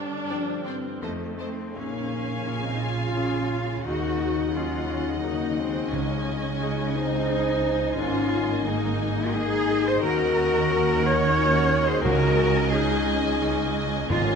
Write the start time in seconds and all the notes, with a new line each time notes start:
Already playing: G2 D3 G3 D4 G4
0.07 C4
0.29 G2 F3 C4 D4 G4 C5 D5 G5
0.55 G4
0.65 E3 C4 C5 D5 G5
0.78 C5
1.02 F2 F3 A3 C4 D#4 C5 D#5 A5
1.27 C4
1.39 A3 C4 C5 D#5 A5
1.52 D#4 C5
1.75 A#1 A#2 C#3 A#3 C#4 F5 G#5
2.12 A#3
2.46 C#4 F4 G#4
2.63 C4 D#4
2.81 C#4 F4 G#4
3.16 C#4 F4 G#4
3.50 G#3
3.84 D#2 D#3 D#4 F#4 D#5 F#5
4.55 F#3 C#4 D#4 F4
4.89 F#3
5.23 C#3 A#3 D#4 F#4
5.58 G#3 C4
5.92 C#2 C#3 G#3 C#4 G#5
6.62 C#3 D#4 G#4
6.96 C4 D#4 G#4 C5
7.29 C#3 D#4 G#4
7.65 C#4
7.95 G#1 G#2 C#4 F4
7.99 A#3 C#4 D#5
8.33 A#3
8.67 A#3 D#4 G#4
9.01 G#4
9.35 A#3 D#4 G#4
9.69 A#3
9.84 G#4 C5
10.01 D#2 D#3 C#4 F#4 A#4 F#5
10.37 C#4
10.71 C#4 D#4 F#4
11.03 F#4 A#4 C#5
11.38 C#4 D#4 F#4
11.73 C#4
11.87 G#4 C5
12.03 C#2 C#3 F#4 A#4 D#5 G#5
12.39 C#4
12.69 D#4 G#4
12.73 C#4 D#4 G#4
13.08 G#4
13.41 C#4 D#4 G#4
13.75 C#4
14.07 G#1 G#2 A#3 C#4 F4 D#5 G#5